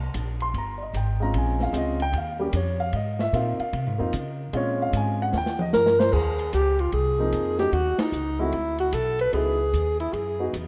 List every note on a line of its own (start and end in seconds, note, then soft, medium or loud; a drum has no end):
0.00 0.13 C2 medium
0.14 0.53 A#1 medium
0.14 hi-hat pedal medium
0.14 ride medium
0.40 0.55 C6 medium
0.40 ride soft
0.54 0.93 G1 medium
0.54 ride medium
0.58 0.82 A#5 medium
0.78 0.80 D5 soft
0.82 0.95 D#5 medium
0.93 1.32 G#1 medium
0.93 1.21 G5 medium
0.93 hi-hat pedal medium
0.93 ride medium
1.20 1.71 G#3 medium
1.20 1.71 C4 medium
1.20 1.72 C#4 medium
1.20 1.72 F4 medium
1.20 1.35 A#5 medium
1.34 1.72 A#1 medium
1.34 ride medium
1.38 1.61 G#5 medium
1.60 1.75 F5 medium
1.60 snare soft
1.73 2.12 C#2 medium
1.73 1.97 G#3 medium
1.73 1.97 C4 medium
1.73 1.97 C#4 medium
1.73 1.98 F4 medium
1.73 hi-hat pedal medium
1.73 ride medium
1.78 2.01 D#5 medium
2.00 2.14 G5 loud
2.00 ride soft
2.13 2.52 D#2 medium
2.13 ride medium
2.18 2.41 F5 medium
2.39 2.52 G3 medium
2.39 2.52 A#3 medium
2.39 2.53 C#4 medium
2.39 2.53 G4 medium
2.39 2.54 A#4 medium
2.53 2.92 F2 medium
2.53 2.80 C#5 medium
2.53 hi-hat pedal medium
2.53 ride medium
2.80 2.93 F5 medium
2.93 3.32 G#2 medium
2.93 3.20 D#5 medium
2.93 ride medium
3.19 3.33 E5 medium
3.19 snare soft
3.33 3.57 A#2 medium
3.33 3.57 A#3 medium
3.33 3.57 C4 soft
3.33 3.57 D#4 soft
3.33 3.57 F4 medium
3.33 3.58 F5 medium
3.33 hi-hat pedal medium
3.33 ride medium
3.59 4.10 F5 medium
3.59 muted upright bass stroke soft
3.59 ride soft
3.73 3.87 C3 medium
3.73 ride medium
3.87 3.99 G#2 medium
3.98 4.12 F2 medium
3.98 4.11 A#3 medium
3.98 4.11 C4 medium
3.98 4.12 D#4 medium
3.98 4.12 F4 medium
4.13 4.52 C#3 medium
4.13 hi-hat pedal medium
4.13 ride medium
4.53 4.92 A#2 medium
4.53 5.33 G#3 medium
4.53 5.33 C4 medium
4.53 5.33 C#4 medium
4.53 5.34 F4 medium
4.53 4.80 C#5 medium
4.53 ride medium
4.82 4.94 F5 medium
4.93 5.31 G#2 medium
4.93 hi-hat pedal soft
4.93 ride medium
4.97 5.20 G#5 medium
5.22 5.34 F#5 medium
5.33 5.71 D#2 medium
5.33 snare soft
5.38 5.61 G5 medium
5.46 snare medium
5.59 5.69 D#5 medium
5.59 mid tom medium
5.73 6.12 G2 medium
5.73 6.01 A#4 loud
5.73 snare medium
5.73 hi-hat pedal medium
5.86 snare medium
5.99 6.14 C5 medium
5.99 snare medium
6.13 6.51 D#2 medium
6.13 6.53 G#4 medium
6.13 kick medium
6.13 crash medium
6.39 ride soft
6.53 6.92 C#2 medium
6.53 6.82 G4 medium
6.53 hi-hat pedal medium
6.53 ride medium
6.79 6.93 F4 medium
6.79 ride soft
6.92 7.31 C2 medium
6.92 7.55 G#4 medium
6.92 ride soft
7.18 7.56 F3 medium
7.18 7.56 A#3 medium
7.18 7.56 C4 medium
7.18 7.57 D#4 medium
7.32 7.71 F2 medium
7.32 hi-hat pedal soft
7.32 ride medium
7.58 7.71 F#3 medium
7.58 7.71 A3 soft
7.58 7.72 C#4 soft
7.58 7.72 D#4 medium
7.58 7.75 G4 medium
7.58 snare soft
7.58 ride soft
7.72 7.97 D#2 medium
7.72 8.01 F#4 medium
7.72 ride medium
7.99 8.42 D#4 medium
7.99 snare medium
7.99 ride medium
8.12 8.51 C#2 medium
8.12 hi-hat pedal medium
8.39 8.51 G#3 medium
8.39 8.52 A3 medium
8.39 8.52 C4 medium
8.39 8.79 E4 medium
8.39 8.52 F#4 medium
8.52 8.91 D2 medium
8.52 ride soft
8.78 8.95 F#4 medium
8.78 ride soft
8.92 9.31 B1 medium
8.92 9.20 A4 medium
8.92 hi-hat pedal medium
8.92 ride medium
9.19 9.33 B4 medium
9.19 ride soft
9.32 9.72 C#2 medium
9.32 9.56 F#3 soft
9.32 9.56 B3 medium
9.32 9.57 D#4 soft
9.32 9.57 E4 medium
9.32 9.96 G#4 medium
9.32 ride medium
9.73 10.12 D#2 medium
9.73 hi-hat pedal soft
9.73 ride medium
10.00 10.15 E4 medium
10.00 ride soft
10.13 10.52 F#2 medium
10.13 10.48 G#4 medium
10.13 ride soft
10.39 10.52 F#3 medium
10.39 10.52 B3 soft
10.39 10.52 D#4 medium
10.39 10.52 F#4 medium
10.53 10.68 E2 medium
10.53 hi-hat pedal medium
10.53 ride medium